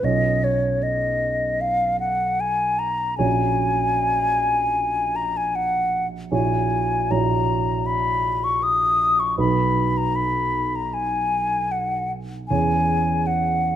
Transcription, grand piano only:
0, 0, Header, 1, 2, 480
1, 0, Start_track
1, 0, Key_signature, 6, "major"
1, 0, Tempo, 789474
1, 22, Time_signature, 4, 2, 24, 8
1, 2903, Tempo, 768246
1, 3869, Key_signature, 5, "major"
1, 5783, Tempo, 778210
1, 8480, End_track
2, 0, Start_track
2, 0, Title_t, "Grand piano"
2, 0, Program_c, 0, 0
2, 0, Control_c, 0, 64, 127
2, 18, Note_on_c, 0, 65, 34
2, 19, Note_on_c, 0, 35, 42
2, 20, Note_on_c, 0, 61, 31
2, 21, Note_on_c, 0, 73, 32
2, 31, Control_c, 0, 64, 0
2, 112, Control_c, 0, 64, 127
2, 1915, Note_off_c, 0, 65, 0
2, 1916, Note_off_c, 0, 35, 0
2, 1916, Note_off_c, 0, 61, 0
2, 1917, Note_off_c, 0, 73, 0
2, 1936, Note_on_c, 0, 66, 34
2, 1937, Note_on_c, 0, 73, 37
2, 1941, Note_on_c, 0, 34, 43
2, 1941, Note_on_c, 0, 61, 35
2, 1952, Control_c, 0, 64, 0
2, 2051, Control_c, 0, 64, 127
2, 3840, Note_off_c, 0, 66, 0
2, 3841, Note_off_c, 0, 73, 0
2, 3843, Note_off_c, 0, 34, 0
2, 3843, Note_off_c, 0, 61, 0
2, 3865, Note_on_c, 0, 73, 34
2, 3866, Note_on_c, 0, 34, 44
2, 3866, Note_on_c, 0, 66, 36
2, 3868, Note_on_c, 0, 64, 36
2, 3879, Control_c, 0, 64, 0
2, 3984, Control_c, 0, 64, 127
2, 4337, Note_off_c, 0, 34, 0
2, 4337, Note_off_c, 0, 66, 0
2, 4337, Note_off_c, 0, 73, 0
2, 4338, Note_off_c, 0, 64, 0
2, 4359, Note_on_c, 0, 64, 39
2, 4359, Note_on_c, 0, 73, 37
2, 4360, Note_on_c, 0, 34, 43
2, 4360, Note_on_c, 0, 66, 37
2, 5760, Note_off_c, 0, 64, 0
2, 5760, Note_off_c, 0, 73, 0
2, 5761, Note_off_c, 0, 34, 0
2, 5761, Note_off_c, 0, 66, 0
2, 5777, Note_on_c, 0, 66, 36
2, 5778, Note_on_c, 0, 63, 34
2, 5780, Note_on_c, 0, 35, 45
2, 5780, Note_on_c, 0, 71, 37
2, 5792, Control_c, 0, 64, 0
2, 5878, Control_c, 0, 64, 127
2, 7676, Note_off_c, 0, 63, 0
2, 7676, Note_off_c, 0, 66, 0
2, 7677, Note_off_c, 0, 35, 0
2, 7677, Note_off_c, 0, 71, 0
2, 7706, Note_on_c, 0, 61, 34
2, 7708, Note_on_c, 0, 40, 42
2, 7708, Note_on_c, 0, 68, 32
2, 7708, Note_on_c, 0, 73, 34
2, 7713, Control_c, 0, 64, 0
2, 7816, Control_c, 0, 64, 127
2, 8480, Note_off_c, 0, 40, 0
2, 8480, Note_off_c, 0, 61, 0
2, 8480, Note_off_c, 0, 68, 0
2, 8480, Note_off_c, 0, 73, 0
2, 8480, End_track
0, 0, End_of_file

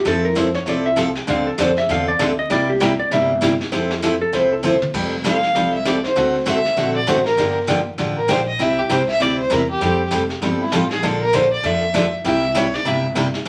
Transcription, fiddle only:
0, 0, Header, 1, 2, 480
1, 0, Start_track
1, 0, Key_signature, -1, "major"
1, 0, Tempo, 304569
1, 93, Time_signature, 4, 2, 24, 8
1, 21251, End_track
2, 0, Start_track
2, 0, Title_t, "Fiddle"
2, 0, Program_c, 0, 110
2, 8294, Note_on_c, 0, 77, 80
2, 9001, Note_off_c, 0, 77, 0
2, 9046, Note_on_c, 0, 76, 85
2, 9252, Note_on_c, 0, 74, 76
2, 9275, Note_off_c, 0, 76, 0
2, 9522, Note_off_c, 0, 74, 0
2, 9531, Note_on_c, 0, 72, 82
2, 9972, Note_off_c, 0, 72, 0
2, 10201, Note_on_c, 0, 76, 102
2, 10913, Note_off_c, 0, 76, 0
2, 10969, Note_on_c, 0, 74, 82
2, 11164, Note_on_c, 0, 72, 91
2, 11187, Note_off_c, 0, 74, 0
2, 11426, Note_off_c, 0, 72, 0
2, 11436, Note_on_c, 0, 70, 92
2, 11883, Note_off_c, 0, 70, 0
2, 12876, Note_on_c, 0, 70, 87
2, 13092, Note_on_c, 0, 72, 97
2, 13115, Note_off_c, 0, 70, 0
2, 13353, Note_off_c, 0, 72, 0
2, 13362, Note_on_c, 0, 75, 96
2, 13568, Note_on_c, 0, 76, 102
2, 13592, Note_off_c, 0, 75, 0
2, 13841, Note_on_c, 0, 67, 84
2, 13865, Note_off_c, 0, 76, 0
2, 14042, Note_on_c, 0, 72, 87
2, 14066, Note_off_c, 0, 67, 0
2, 14314, Note_off_c, 0, 72, 0
2, 14323, Note_on_c, 0, 76, 116
2, 14519, Note_on_c, 0, 74, 96
2, 14543, Note_off_c, 0, 76, 0
2, 14797, Note_off_c, 0, 74, 0
2, 14806, Note_on_c, 0, 72, 88
2, 15003, Note_on_c, 0, 70, 84
2, 15027, Note_off_c, 0, 72, 0
2, 15274, Note_off_c, 0, 70, 0
2, 15283, Note_on_c, 0, 67, 98
2, 15899, Note_off_c, 0, 67, 0
2, 16720, Note_on_c, 0, 64, 77
2, 16920, Note_on_c, 0, 65, 85
2, 16944, Note_off_c, 0, 64, 0
2, 17180, Note_off_c, 0, 65, 0
2, 17190, Note_on_c, 0, 68, 89
2, 17392, Note_on_c, 0, 69, 79
2, 17416, Note_off_c, 0, 68, 0
2, 17658, Note_off_c, 0, 69, 0
2, 17668, Note_on_c, 0, 70, 92
2, 17880, Note_on_c, 0, 72, 92
2, 17904, Note_off_c, 0, 70, 0
2, 18152, Note_off_c, 0, 72, 0
2, 18161, Note_on_c, 0, 74, 93
2, 18361, Note_on_c, 0, 76, 100
2, 18384, Note_off_c, 0, 74, 0
2, 19119, Note_off_c, 0, 76, 0
2, 19321, Note_on_c, 0, 76, 101
2, 19802, Note_on_c, 0, 73, 89
2, 19825, Note_off_c, 0, 76, 0
2, 20074, Note_on_c, 0, 74, 97
2, 20098, Note_off_c, 0, 73, 0
2, 20276, Note_on_c, 0, 76, 82
2, 20300, Note_off_c, 0, 74, 0
2, 20556, Note_off_c, 0, 76, 0
2, 21251, End_track
0, 0, End_of_file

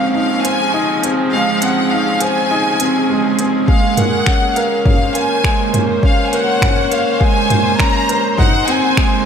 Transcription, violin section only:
0, 0, Header, 1, 2, 480
1, 0, Start_track
1, 0, Key_signature, -5, "minor"
1, 0, Tempo, 588235
1, 1085, Time_signature, 4, 2, 24, 8
1, 7552, End_track
2, 0, Start_track
2, 0, Title_t, "Violin section"
2, 0, Program_c, 0, 48
2, 0, Note_on_c, 0, 77, 85
2, 111, Note_off_c, 0, 77, 0
2, 121, Note_on_c, 0, 77, 96
2, 346, Note_off_c, 0, 77, 0
2, 366, Note_on_c, 0, 80, 103
2, 846, Note_off_c, 0, 80, 0
2, 1081, Note_on_c, 0, 77, 98
2, 1306, Note_off_c, 0, 77, 0
2, 1328, Note_on_c, 0, 78, 91
2, 1567, Note_off_c, 0, 78, 0
2, 1568, Note_on_c, 0, 77, 93
2, 1806, Note_off_c, 0, 77, 0
2, 1810, Note_on_c, 0, 80, 103
2, 2768, Note_off_c, 0, 80, 0
2, 3002, Note_on_c, 0, 77, 91
2, 3227, Note_off_c, 0, 77, 0
2, 3248, Note_on_c, 0, 78, 101
2, 3726, Note_off_c, 0, 78, 0
2, 3727, Note_on_c, 0, 77, 84
2, 3956, Note_off_c, 0, 77, 0
2, 3966, Note_on_c, 0, 77, 96
2, 4189, Note_off_c, 0, 77, 0
2, 4206, Note_on_c, 0, 80, 98
2, 4686, Note_off_c, 0, 80, 0
2, 4940, Note_on_c, 0, 77, 93
2, 5103, Note_off_c, 0, 77, 0
2, 5107, Note_on_c, 0, 80, 67
2, 5165, Note_off_c, 0, 80, 0
2, 5168, Note_on_c, 0, 78, 99
2, 5647, Note_off_c, 0, 78, 0
2, 5647, Note_on_c, 0, 77, 86
2, 5886, Note_off_c, 0, 77, 0
2, 5886, Note_on_c, 0, 80, 108
2, 6365, Note_on_c, 0, 82, 107
2, 6366, Note_off_c, 0, 80, 0
2, 6725, Note_off_c, 0, 82, 0
2, 6844, Note_on_c, 0, 78, 112
2, 7067, Note_off_c, 0, 78, 0
2, 7084, Note_on_c, 0, 80, 103
2, 7552, Note_off_c, 0, 80, 0
2, 7552, End_track
0, 0, End_of_file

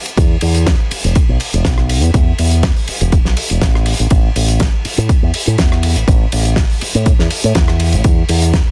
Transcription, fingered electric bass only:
0, 0, Header, 1, 3, 480
1, 0, Start_track
1, 0, Tempo, 491803
1, 172, Time_signature, 4, 2, 24, 8
1, 8502, End_track
2, 0, Start_track
2, 0, Title_t, "Fingered electric bass"
2, 0, Program_c, 0, 33
2, 170, Note_on_c, 0, 40, 95
2, 337, Note_off_c, 0, 40, 0
2, 411, Note_on_c, 0, 40, 100
2, 712, Note_off_c, 0, 40, 0
2, 1017, Note_on_c, 0, 28, 92
2, 1124, Note_off_c, 0, 28, 0
2, 1258, Note_on_c, 0, 35, 88
2, 1334, Note_off_c, 0, 35, 0
2, 1498, Note_on_c, 0, 28, 92
2, 1574, Note_off_c, 0, 28, 0
2, 1610, Note_on_c, 0, 35, 101
2, 1979, Note_off_c, 0, 35, 0
2, 1979, Note_on_c, 0, 40, 99
2, 2055, Note_off_c, 0, 40, 0
2, 2089, Note_on_c, 0, 40, 100
2, 2256, Note_off_c, 0, 40, 0
2, 2332, Note_on_c, 0, 40, 95
2, 2632, Note_off_c, 0, 40, 0
2, 2938, Note_on_c, 0, 28, 101
2, 3095, Note_off_c, 0, 28, 0
2, 3180, Note_on_c, 0, 35, 93
2, 3255, Note_off_c, 0, 35, 0
2, 3421, Note_on_c, 0, 28, 90
2, 3496, Note_off_c, 0, 28, 0
2, 3900, Note_on_c, 0, 33, 101
2, 3975, Note_off_c, 0, 33, 0
2, 4253, Note_on_c, 0, 33, 100
2, 4553, Note_off_c, 0, 33, 0
2, 4858, Note_on_c, 0, 45, 98
2, 4966, Note_off_c, 0, 45, 0
2, 5100, Note_on_c, 0, 40, 92
2, 5175, Note_off_c, 0, 40, 0
2, 5340, Note_on_c, 0, 45, 95
2, 5415, Note_off_c, 0, 45, 0
2, 5452, Note_on_c, 0, 40, 102
2, 5819, Note_off_c, 0, 40, 0
2, 5819, Note_on_c, 0, 33, 98
2, 5895, Note_off_c, 0, 33, 0
2, 5930, Note_on_c, 0, 33, 101
2, 6097, Note_off_c, 0, 33, 0
2, 6174, Note_on_c, 0, 33, 97
2, 6473, Note_off_c, 0, 33, 0
2, 6781, Note_on_c, 0, 45, 94
2, 6937, Note_off_c, 0, 45, 0
2, 7021, Note_on_c, 0, 40, 91
2, 7096, Note_off_c, 0, 40, 0
2, 7261, Note_on_c, 0, 45, 94
2, 7336, Note_off_c, 0, 45, 0
2, 7372, Note_on_c, 0, 40, 101
2, 7741, Note_on_c, 0, 33, 101
2, 7756, Note_off_c, 0, 40, 0
2, 7816, Note_off_c, 0, 33, 0
2, 7852, Note_on_c, 0, 40, 100
2, 8017, Note_off_c, 0, 40, 0
2, 8092, Note_on_c, 0, 40, 97
2, 8392, Note_off_c, 0, 40, 0
2, 8502, End_track
3, 0, Start_track
3, 0, Title_t, "Muted fingered electric bass strokes"
3, 890, Note_on_c, 9, 29, 43
3, 987, Note_off_c, 9, 29, 0
3, 1130, Note_on_c, 9, 29, 44
3, 1228, Note_off_c, 9, 29, 0
3, 2812, Note_on_c, 9, 29, 45
3, 2909, Note_off_c, 9, 29, 0
3, 4733, Note_on_c, 9, 29, 43
3, 4830, Note_off_c, 9, 29, 0
3, 4971, Note_on_c, 9, 29, 46
3, 5069, Note_off_c, 9, 29, 0
3, 6655, Note_on_c, 9, 29, 43
3, 6753, Note_off_c, 9, 29, 0
3, 8502, End_track
0, 0, End_of_file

